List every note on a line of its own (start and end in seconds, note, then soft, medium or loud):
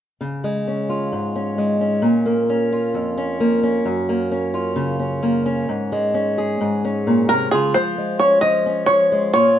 0.21 1.12 C#3 soft
0.44 1.57 G#3 soft
0.67 1.35 C#4 soft
0.89 2.71 F4 soft
1.12 2.00 G#2 soft
1.36 1.80 C#4 soft
1.58 2.03 G#3 soft
1.81 2.49 C#4 soft
2.02 2.94 A#2 medium
2.26 3.39 A#3 soft
2.49 3.17 C#4 soft
2.73 3.86 F4 soft
2.94 3.85 F2 soft
3.18 3.63 C#4 soft
3.40 3.83 A#3 soft
3.63 4.31 C#4 soft
3.85 5.66 F#2 medium
4.09 5.21 A#3 soft
4.31 4.99 C#4 soft
4.54 5.69 F4 soft
4.76 5.65 C#3 soft
5.00 5.45 C#4 soft
5.23 5.66 A#3 soft
5.46 6.14 C#4 soft
5.69 6.59 G#2 soft
5.92 7.97 G#3 soft
6.14 6.83 C#4 soft
6.38 7.49 G#4 soft
6.61 7.49 G#2 soft
6.85 7.50 C#4 soft
7.07 7.29 A#2 soft
7.29 7.52 C3 medium
7.29 7.51 A#4 medium
7.51 7.75 C#3 soft
7.51 9.34 F4 soft
7.51 7.75 G#4 medium
7.74 8.42 F3 soft
7.74 8.19 C5 medium
7.98 9.11 G#3 soft
8.20 8.66 C#4 soft
8.20 8.41 C#5 medium
8.41 8.87 F3 soft
8.41 8.86 D#5 medium
8.66 9.59 C#4 soft
8.86 9.32 F3 soft
8.86 9.30 C#5 medium
9.12 9.35 G#3 soft
9.34 9.59 A#2 medium
9.34 9.59 F4 medium
9.34 9.59 C#5 medium